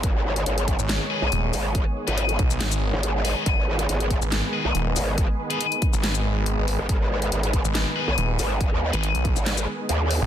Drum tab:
HH |x--xxxx-x---x-o-|x--xxxx-x---x-o-|x--xxxx-x---x-o-|x--xxxx-x---x-o-|
SH |-------x------x-|-------x-x------|-------x------x-|-------x-x------|
CP |--------x-------|--------x-------|--------x-------|--------x-------|
SD |--------o-------|--------o-------|--------o-------|--------o-------|
BD |o-----o---------|o-----o---------|o-----o---------|o-----o---------|

HH |x--xxxx-x---x-o-|x--xxxx-x---x-o-|
SH |-------x------x-|-------x-x------|
CP |--------x-------|--------x-------|
SD |--------o-------|--------o-------|
BD |o-----o---------|o-----o---------|